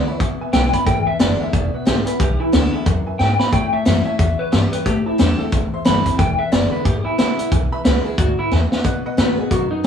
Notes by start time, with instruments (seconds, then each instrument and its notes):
Already playing: steel-string acoustic guitar E2, clean electric guitar D5
0.07 steel-string acoustic guitar B3 E4, upright piano B4 E5 B5, muted upright bass stroke
0.20 steel-string acoustic guitar B2, upright piano B4 E5 G#5, kick, closed hi-hat
0.40 upright piano B4 E5 G#5, muted upright bass stroke
0.53 upright bass B1, steel-string acoustic guitar D3 G#3 B3 E4, upright piano B4 E5 G#5, clean electric guitar G5, snare, closed hi-hat
0.73 steel-string acoustic guitar B3 E4, upright piano B4 E5 G#5, clean electric guitar B5, muted upright bass stroke, kick, closed hi-hat
0.86 upright bass G#1, steel-string acoustic guitar E2, upright piano B4 E5 G#5, clean electric guitar G5, kick, closed hi-hat
1.07 upright piano B4 E5 G#5, clean electric guitar E5, muted upright bass stroke
1.19 upright bass F#1, steel-string acoustic guitar D3 G#3 B3 E4, upright piano B4 E5 B5, clean electric guitar D5, snare, closed hi-hat
1.40 upright piano B4 E5 G#5, clean electric guitar E5, muted upright bass stroke
1.53 upright bass E1, steel-string acoustic guitar B2, upright piano B4 E5 G#5, clean electric guitar D5, kick, closed hi-hat
1.74 clean electric guitar B4, upright piano B4 E5 F#5, muted upright bass stroke
1.85 upright bass G#1, steel-string acoustic guitar D3 G#3 B3 E4, clean electric guitar G4, upright piano B4 E5 G#5, snare, closed hi-hat
2.06 steel-string acoustic guitar B3 E4, clean electric guitar B4, upright piano B4 E5 G#5, muted upright bass stroke, closed hi-hat
2.20 upright bass B1, steel-string acoustic guitar E2, clean electric guitar G4, upright piano B4 E5 G#5, kick, closed hi-hat
2.40 clean electric guitar E4, upright piano B4 E5 G#5
2.52 upright bass D2, steel-string acoustic guitar D3 G#3 B3 E4, clean electric guitar D4, upright piano B4 G#5, snare, closed hi-hat
2.73 clean electric guitar E4, upright piano B4 E5 G#5
2.86 upright bass E2, steel-string acoustic guitar F#2, upright piano B4 E5 G#5, kick, closed hi-hat
3.06 upright piano B4 E5 G#5, muted upright bass stroke
3.19 steel-string acoustic guitar G#2, upright bass G#2, upright piano B4 E5 G#5, clean electric guitar G5, snare
3.39 upright piano B4 E5 G#5, clean electric guitar B5, snare
3.52 steel-string acoustic guitar A2, upright bass A2, upright piano C#5 E5 A5, clean electric guitar G5, kick, closed hi-hat
3.73 upright piano C#5 E5 A5, clean electric guitar E5, muted upright bass stroke
3.85 upright bass F#2, steel-string acoustic guitar E3 G3 C#4 E4, upright piano C#5 E5 A5, clean electric guitar E5, snare, closed hi-hat
4.05 steel-string acoustic guitar C#4 E4, upright piano C#5 E5 A5, clean electric guitar E5, muted upright bass stroke
4.19 steel-string acoustic guitar E2, upright bass E2, upright piano C#5 E5 F#5, clean electric guitar E5, kick, closed hi-hat
4.39 clean electric guitar B4, upright piano C#5 E5 F#5, muted upright bass stroke
4.52 upright bass G2, steel-string acoustic guitar E3 G3 C#4 E4, clean electric guitar G4, upright piano C#5 E5 A5, snare, closed hi-hat
4.72 clean electric guitar B4, upright piano C#5 E5 G5, closed hi-hat
4.85 steel-string acoustic guitar A2, upright bass A2, clean electric guitar G4, upright piano C5 E5 A5, kick, closed hi-hat
5.06 clean electric guitar E4, upright piano C5 E5 A5, muted upright bass stroke
5.18 upright bass E2, steel-string acoustic guitar E3 G3 C4 E4, clean electric guitar D4, upright piano C5 E5 B5, snare, closed hi-hat
5.39 steel-string acoustic guitar C4 E4, clean electric guitar A4, upright piano C5 E5 A5, muted upright bass stroke
5.52 upright bass A1, steel-string acoustic guitar E2, upright piano C5 E5 A5, kick, closed hi-hat
5.73 upright piano C5 E5 C6, muted upright bass stroke
5.85 upright bass G1, steel-string acoustic guitar E3 G3 C4 E4, upright piano C5 E5 A5, clean electric guitar B5, snare, closed hi-hat
6.05 steel-string acoustic guitar C4 E4, upright piano C5 E5 A5, muted upright bass stroke, kick, closed hi-hat
6.18 upright bass E1, steel-string acoustic guitar E2, upright piano B4 E5 G#5, clean electric guitar G5, kick, closed hi-hat
6.39 upright piano B4 E5 F#5, clean electric guitar E5, muted upright bass stroke
6.52 upright bass F#1, steel-string acoustic guitar D3 G#3 B3 E4, upright piano B4 E5 B5, clean electric guitar D5, snare, closed hi-hat
6.72 upright piano B4 E5 F#5, clean electric guitar B4, muted upright bass stroke
6.85 upright bass G#1, steel-string acoustic guitar B2, clean electric guitar G4, upright piano B4 E5 G#5, kick, closed hi-hat
7.05 clean electric guitar E4, upright piano B4 E5 G#5, muted upright bass stroke
7.18 upright bass A1, steel-string acoustic guitar D3 G#3 B3 E4, clean electric guitar E4, upright piano B4 E5 G#5, snare, closed hi-hat
7.38 steel-string acoustic guitar B3 E4, upright piano B4 E5 F#5, muted upright bass stroke, closed hi-hat
7.52 upright bass B1, steel-string acoustic guitar E2, upright piano B4 E5 G#5, kick, closed hi-hat
7.72 upright piano B4 E5 B5
7.85 upright bass C#2, steel-string acoustic guitar D3 G#3 B3 E4, clean electric guitar B4, upright piano B4 G#5, snare, closed hi-hat
8.05 steel-string acoustic guitar B3 E4, clean electric guitar G#4, upright piano B4 E5 B5
8.18 upright bass D2, steel-string acoustic guitar G#2, clean electric guitar F#4, upright piano E5 G#5, kick, closed hi-hat
8.39 clean electric guitar E4, upright piano B4 E5 F#5, muted upright bass stroke
8.51 upright bass E2, steel-string acoustic guitar A2, upright piano B4 E5 G#5, snare
8.72 upright piano B4 E5 F#5, snare
8.84 steel-string acoustic guitar B2, upright piano B4 D#5 F#5, kick, closed hi-hat
9.05 upright piano B4 D#5 F#5, muted upright bass stroke
9.17 upright bass A2, steel-string acoustic guitar D#3 A3 B3 F#4, clean electric guitar B4, snare, closed hi-hat
9.37 steel-string acoustic guitar B3 F#4, clean electric guitar G#4, upright piano B4 D#5 G#5, muted upright bass stroke
9.51 steel-string acoustic guitar F#2, upright bass B2, clean electric guitar F#4, upright piano B4 D#5 F#5, kick, closed hi-hat
9.71 clean electric guitar D#4, upright piano B4 D#5 F#5, muted upright bass stroke
9.84 steel-string acoustic guitar D#3